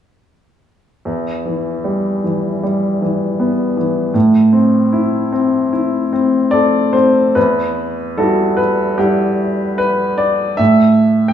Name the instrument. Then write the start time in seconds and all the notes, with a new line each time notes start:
grand piano
1.05 E2
1.45 E3
1.84 G3
2.24 E3
2.63 G3
3.02 E3
3.39 B3
3.77 E3
4.14 A2
4.53 C4
4.92 E4
5.33 C4
5.73 E4
6.13 C4
6.51 A4 D5
6.93 C4 C5
7.35 E2 B4
8.17 G3 E4 F#4 A4
8.57 B4
8.98 G3 E4 G4 F#5
9.78 B4
10.18 D5
10.57 A2 E5
11.28 G5